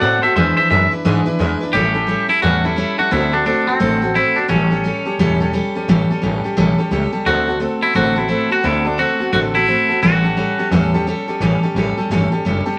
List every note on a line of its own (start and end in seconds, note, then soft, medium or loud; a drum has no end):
0.00 0.23 A2 medium
0.00 0.23 A3 medium
0.00 0.23 C4 medium
0.00 0.23 F#4 medium
0.00 0.22 A4 medium
0.00 0.21 D5 medium
0.00 0.23 F#5 loud
0.22 0.36 C4 soft
0.22 0.37 F#4 medium
0.22 0.36 A4 medium
0.22 0.35 C5 medium
0.22 0.35 E5 loud
0.22 muted upright bass stroke medium
0.36 0.57 E2 medium
0.36 0.58 E3 medium
0.36 0.58 G#3 medium
0.36 0.58 D4 medium
0.36 0.57 E4 medium
0.36 0.56 B4 medium
0.36 0.55 C5 medium
0.36 0.56 E5 medium
0.57 0.70 D4 soft
0.57 0.71 E4 medium
0.57 0.71 B4 medium
0.57 0.69 C5 medium
0.57 0.69 E5 loud
0.57 muted upright bass stroke medium
0.70 0.91 F#2 loud
0.70 0.92 G#3 medium
0.70 0.92 D4 medium
0.70 0.91 E4 medium
0.70 0.90 B4 medium
0.70 0.91 E5 loud
0.91 1.04 D4 soft
0.91 1.04 E4 medium
0.91 1.05 B4 medium
0.91 muted upright bass stroke medium
1.05 1.26 G#2 medium
1.05 1.26 E3 medium
1.05 1.26 G#3 loud
1.05 1.27 D4 medium
1.05 1.26 E4 medium
1.05 1.24 B4 loud
1.26 1.39 D4 medium
1.26 1.39 E4 medium
1.26 1.39 B4 medium
1.26 muted upright bass stroke medium
1.39 1.60 E2 medium
1.39 1.61 G#3 medium
1.39 1.61 D4 medium
1.39 1.61 E4 medium
1.39 1.59 B4 medium
1.61 1.74 D4 medium
1.61 1.74 E4 medium
1.61 1.74 B4 medium
1.73 2.13 A1 medium
1.73 1.95 A2 medium
1.73 1.95 E3 medium
1.73 1.95 G3 medium
1.73 1.95 C#4 medium
1.73 1.94 E4 medium
1.73 2.25 G4 loud
1.73 1.93 A4 medium
1.94 2.06 G3 soft
1.94 2.07 C#4 soft
1.94 2.08 E4 soft
1.94 2.08 A4 soft
2.07 2.29 G3 medium
2.07 2.28 C#4 medium
2.07 2.27 E4 medium
2.07 2.27 A4 medium
2.28 2.41 G3 soft
2.28 2.42 C#4 soft
2.28 2.42 E4 medium
2.28 2.42 E4 loud
2.28 2.42 A4 medium
2.28 muted upright bass stroke medium
2.42 2.82 E2 medium
2.42 2.64 A2 medium
2.42 2.64 E3 medium
2.42 2.64 G3 medium
2.42 2.64 C#4 medium
2.42 2.63 E4 medium
2.42 2.65 F#4 loud
2.42 2.63 A4 medium
2.64 2.75 G3 soft
2.64 2.76 C#4 soft
2.64 2.76 E4 medium
2.64 2.98 E4 medium
2.64 2.77 A4 medium
2.76 2.98 G3 medium
2.76 2.98 C#4 medium
2.76 2.97 E4 medium
2.76 2.97 A4 medium
2.98 3.11 G3 soft
2.98 3.12 C#4 soft
2.98 3.12 E4 medium
2.98 3.12 F#4 medium
2.98 3.11 A4 medium
2.98 muted upright bass stroke medium
3.11 3.51 D2 medium
3.11 3.33 D3 medium
3.11 3.33 A3 medium
3.11 3.33 C4 medium
3.11 3.34 E4 medium
3.11 3.32 F#4 medium
3.11 3.31 A4 medium
3.32 3.45 C4 soft
3.32 3.45 D4 medium
3.32 3.46 F#4 soft
3.32 3.46 A4 medium
3.45 3.67 A3 medium
3.45 3.68 C4 medium
3.45 3.68 D4 medium
3.45 3.67 F#4 medium
3.45 3.66 A4 medium
3.67 4.17 C4 loud
3.67 3.79 C4 soft
3.67 3.79 F#4 soft
3.67 3.80 A4 medium
3.67 muted upright bass stroke medium
3.80 4.20 A1 medium
3.80 4.02 D3 medium
3.80 4.02 A3 medium
3.80 4.02 C4 medium
3.80 4.02 F#4 medium
3.80 4.00 A4 medium
4.02 4.14 C4 soft
4.02 4.15 F#4 medium
4.02 4.15 A4 medium
4.15 4.37 A3 medium
4.15 4.37 C4 medium
4.15 4.38 E4 loud
4.15 4.36 F#4 medium
4.15 4.35 A4 medium
4.36 4.48 C4 soft
4.36 4.49 D4 medium
4.36 4.49 F#4 soft
4.36 4.48 A4 medium
4.36 muted upright bass stroke medium
4.48 4.89 A1 medium
4.48 4.70 A2 medium
4.48 4.71 E3 medium
4.48 4.71 G3 medium
4.48 4.71 C#4 medium
4.48 5.49 C#4 medium
4.48 4.70 G4 medium
4.48 4.69 A4 medium
4.70 4.82 G3 soft
4.70 4.83 C#4 soft
4.70 4.84 G4 medium
4.70 4.84 A4 medium
4.84 5.06 G3 medium
4.84 5.05 C#4 medium
4.84 5.05 G4 medium
4.84 5.04 A4 medium
5.05 5.18 G3 soft
5.05 5.19 C#4 medium
5.05 5.19 G4 medium
5.05 5.19 A4 medium
5.19 5.58 E1 medium
5.19 5.41 A2 medium
5.19 5.41 E3 medium
5.19 5.41 G3 medium
5.19 5.40 C#4 medium
5.19 5.40 G4 medium
5.19 5.39 A4 medium
5.40 5.52 G3 medium
5.40 5.53 C#4 medium
5.40 5.53 G4 medium
5.40 5.53 A4 medium
5.53 5.75 G3 medium
5.53 5.75 C#4 medium
5.53 5.75 G4 medium
5.53 5.74 A4 medium
5.75 5.88 G3 soft
5.75 5.88 C#4 medium
5.75 5.88 G4 medium
5.75 5.88 A4 medium
5.75 muted upright bass stroke medium
5.88 6.03 A1 medium
5.88 6.10 A2 medium
5.88 6.10 E3 medium
5.88 6.10 G3 loud
5.88 6.10 C#4 medium
5.88 6.10 G4 loud
5.88 6.09 A4 medium
6.10 6.20 G3 medium
6.10 6.21 C#4 medium
6.10 6.22 G4 medium
6.10 6.22 A4 medium
6.10 muted upright bass stroke medium
6.22 6.41 A1 medium
6.22 6.44 G3 medium
6.22 6.44 C#4 medium
6.22 6.44 G4 medium
6.22 6.43 A4 medium
6.44 6.56 G3 medium
6.44 6.56 C#4 medium
6.44 6.56 G4 medium
6.44 6.57 A4 medium
6.44 muted upright bass stroke medium
6.57 6.75 B1 medium
6.57 6.78 A2 medium
6.57 6.78 E3 medium
6.57 6.79 G3 medium
6.57 6.79 C#4 medium
6.57 6.78 G4 loud
6.57 6.77 A4 loud
6.78 6.90 G3 soft
6.78 6.90 C#4 medium
6.78 6.91 G4 medium
6.78 6.91 A4 medium
6.91 7.10 C#2 medium
6.91 7.13 G3 medium
6.91 7.13 C#4 medium
6.91 7.12 G4 medium
6.91 7.11 A4 medium
7.12 7.26 G3 soft
7.12 7.26 C#4 soft
7.12 7.26 G4 medium
7.12 7.26 A4 medium
7.12 muted upright bass stroke medium
7.26 7.65 D2 medium
7.26 7.48 D3 medium
7.26 7.48 A3 medium
7.26 7.48 C4 medium
7.26 7.58 F#4 medium
7.26 7.47 F#4 medium
7.26 7.46 A4 medium
7.47 7.59 C4 soft
7.47 7.60 F#4 soft
7.47 7.60 A4 medium
7.60 7.82 A3 medium
7.60 7.82 C4 medium
7.60 7.82 F#4 medium
7.60 7.81 A4 medium
7.82 7.94 C4 soft
7.82 7.94 E4 loud
7.82 7.94 F#4 soft
7.82 7.95 A4 medium
7.82 muted upright bass stroke medium
7.94 8.34 A1 medium
7.94 8.16 D3 medium
7.94 8.16 A3 medium
7.94 8.16 C4 medium
7.94 8.15 F#4 medium
7.94 8.18 F#4 loud
7.94 8.14 A4 medium
8.15 8.28 C4 soft
8.15 8.52 E4 loud
8.15 8.28 F#4 medium
8.15 8.29 A4 medium
8.28 8.50 A3 medium
8.28 8.51 C4 medium
8.28 8.50 F#4 medium
8.28 8.48 A4 medium
8.49 8.63 C4 soft
8.49 8.63 F#4 soft
8.49 8.65 F#4 loud
8.49 8.63 A4 soft
8.49 muted upright bass stroke medium
8.63 9.03 D2 medium
8.63 8.85 D3 medium
8.63 8.85 A3 medium
8.63 8.86 C4 medium
8.63 8.87 E4 loud
8.63 8.84 F#4 medium
8.63 8.83 A4 medium
8.84 8.97 C4 soft
8.84 9.00 D4 medium
8.84 8.98 F#4 soft
8.84 8.98 A4 medium
8.98 9.20 A3 medium
8.98 9.20 C4 medium
8.98 9.32 F#4 loud
8.98 9.19 F#4 medium
8.98 9.18 A4 medium
9.19 9.32 C4 soft
9.19 9.32 F#4 soft
9.19 9.33 A4 soft
9.19 muted upright bass stroke medium
9.33 9.72 A1 medium
9.33 9.54 D3 medium
9.33 9.54 A3 medium
9.33 9.55 C4 medium
9.33 9.39 F#4 loud
9.33 9.55 F#4 medium
9.33 9.53 A4 medium
9.55 9.67 C4 medium
9.55 10.02 E4 loud
9.55 9.67 F#4 medium
9.55 9.68 A4 medium
9.67 9.89 A3 medium
9.67 9.89 C4 medium
9.67 9.89 F#4 medium
9.67 9.88 A4 medium
9.89 10.03 C4 soft
9.89 10.03 F#4 soft
9.89 10.02 A4 medium
9.89 muted upright bass stroke medium
10.02 10.42 A1 medium
10.02 10.24 A2 medium
10.02 10.24 E3 medium
10.02 10.24 G3 medium
10.02 10.23 C#4 medium
10.02 10.68 F#4 medium
10.02 10.23 G4 medium
10.02 10.22 A4 medium
10.24 10.35 G3 soft
10.24 10.36 C#4 soft
10.24 10.37 G4 medium
10.24 10.37 A4 medium
10.36 10.58 G3 medium
10.36 10.58 C#4 medium
10.36 10.58 G4 medium
10.36 10.57 A4 medium
10.58 10.71 G3 soft
10.58 10.71 C#4 medium
10.58 10.72 G4 medium
10.58 10.71 A4 medium
10.58 muted upright bass stroke medium
10.71 11.11 E2 medium
10.71 10.93 A2 medium
10.71 10.93 E3 medium
10.71 10.93 G3 medium
10.71 10.94 C#4 medium
10.71 10.94 G4 medium
10.71 10.93 A4 medium
10.94 11.06 G3 soft
10.94 11.06 C#4 medium
10.94 11.07 G4 medium
10.94 11.07 A4 medium
11.07 11.28 G3 medium
11.07 11.28 C#4 medium
11.07 11.27 G4 medium
11.07 11.27 A4 medium
11.27 11.40 G3 medium
11.27 11.41 C#4 medium
11.27 11.41 G4 medium
11.27 11.41 A4 medium
11.27 muted upright bass stroke medium
11.40 11.55 A1 medium
11.40 11.62 A2 medium
11.40 11.62 E3 medium
11.40 11.63 G3 medium
11.40 11.63 C#4 loud
11.40 11.62 G4 loud
11.40 11.62 A4 medium
11.63 11.75 G3 medium
11.63 11.75 C#4 medium
11.63 11.76 G4 medium
11.63 11.76 A4 medium
11.75 11.93 A1 medium
11.75 11.97 G3 medium
11.75 11.97 C#4 medium
11.75 11.97 G4 medium
11.75 11.96 A4 medium
11.96 12.10 G3 soft
11.96 12.10 C#4 medium
11.96 12.10 G4 medium
11.96 12.10 A4 medium
11.96 muted upright bass stroke medium
12.10 12.28 G1 medium
12.10 12.32 A2 medium
12.10 12.32 E3 medium
12.10 12.32 G3 medium
12.10 12.32 C#4 loud
12.10 12.31 G4 medium
12.10 12.31 A4 medium
12.32 12.44 G3 medium
12.32 12.44 C#4 medium
12.32 12.45 G4 medium
12.32 12.44 A4 medium
12.45 12.63 F#1 medium
12.45 12.66 G3 medium
12.45 12.66 C#4 medium
12.45 12.65 G4 medium
12.45 12.64 A4 medium
12.66 12.79 G3 medium
12.66 12.79 C#4 medium
12.66 12.79 G4 medium
12.66 12.79 A4 medium